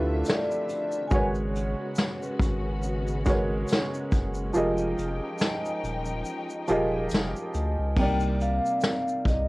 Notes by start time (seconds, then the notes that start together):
Already playing: D2 D3 F3 G3 A3 C4 E4 F4 G4 B4 E5
0.25 D5, tambourine, shaker
0.29 snare
0.51 shaker
0.69 closed hi-hat, shaker
0.92 shaker
1.08 C#3 G#3 B3 C#4 G#5, kick, shaker
1.12 G#1 F#4 A#4 B4 C#5
1.35 shaker
1.56 closed hi-hat, shaker
1.95 snare, tambourine, shaker
2.22 shaker
2.40 G#1, kick, closed hi-hat, shaker
2.83 shaker
3.07 shaker
3.25 G#3 F#4 A#4 B4 C#5, kick, closed hi-hat, shaker
3.67 tambourine, shaker
3.72 snare
3.94 shaker
4.12 F#1, kick, closed hi-hat, shaker
4.34 shaker
4.53 F1 F3 D#4 F4 G4 G#4 A#4 D#5 G5, shaker
4.78 shaker
4.98 F1, closed hi-hat, shaker
5.38 snare, tambourine, shaker
5.65 shaker
5.84 D#1, closed hi-hat, shaker
6.05 shaker
6.25 shaker
6.50 shaker
6.68 D#1 F3 F4 G4 G#4 A#4 D#5, closed hi-hat, shaker
7.10 F1, tambourine, shaker
7.15 snare
7.36 shaker
7.55 D2, closed hi-hat, shaker
7.79 C#2
7.97 C2 C3 G3 A#3 D#4 G5, kick, crash
8.02 D5
8.20 shaker
8.41 F5, closed hi-hat, shaker
8.66 shaker
8.81 snare, tambourine, shaker
9.08 shaker
9.25 C2 D#5, kick, closed hi-hat, shaker